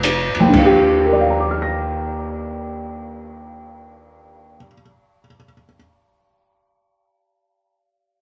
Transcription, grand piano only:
0.40 4.57 D#2 medium
0.49 4.65 D3 medium
0.57 4.74 F4 soft
0.65 4.82 G4 medium
1.05 5.18 A#4 soft
1.13 5.25 D5 soft
1.21 5.33 F5 soft
1.30 5.43 A#5 soft
1.40 5.53 D6 soft
1.51 5.64 F6 soft
1.62 5.75 A#6 soft

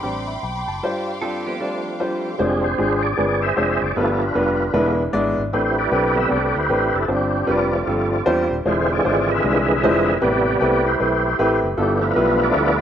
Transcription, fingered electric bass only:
0.04 0.37 A1 medium
0.43 0.64 B1 medium
0.67 0.80 F#1 medium
2.40 2.73 F1 loud
2.79 3.12 G#1 loud
3.18 3.51 G1 loud
3.57 3.78 F1 medium
3.82 3.94 F#1 loud
3.96 4.29 G1 loud
4.35 4.68 F1 loud
4.74 5.07 E1 loud
5.14 5.34 G#1 loud
5.38 5.50 G#1 loud
5.53 5.86 A1 loud
5.92 6.25 B1 loud
6.31 6.52 C2 loud
6.55 6.68 D2 loud
6.69 6.90 A1 loud
6.94 7.07 F#1 medium
7.09 7.42 G1 loud
7.49 7.81 F1 loud
7.87 8.20 G1 loud
8.27 8.47 E2 medium
8.51 8.63 D#1 loud
8.66 8.99 E1 loud
9.05 9.38 G#1 loud
9.44 9.85 C2 loud
9.84 10.16 F1 medium
10.23 10.55 A1 loud
10.62 10.94 C2 loud
11.00 11.33 B1 loud
11.39 11.60 A1 medium
11.63 11.76 F#1 medium
11.78 12.11 G1 loud
12.17 12.50 B1 loud
12.56 12.81 D2 loud

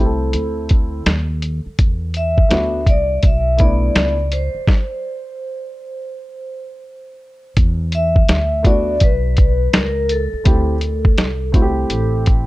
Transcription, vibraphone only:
0.00 0.67 A4 medium
2.17 2.90 E5 medium
2.89 3.25 D5 medium
3.25 3.61 E5 loud
3.61 4.34 D5 medium
4.33 6.81 C5 medium
7.95 8.62 E5 loud
8.67 9.00 D5 medium
9.04 9.77 B4 medium
9.75 10.12 A#4 medium
10.12 12.24 A4 medium

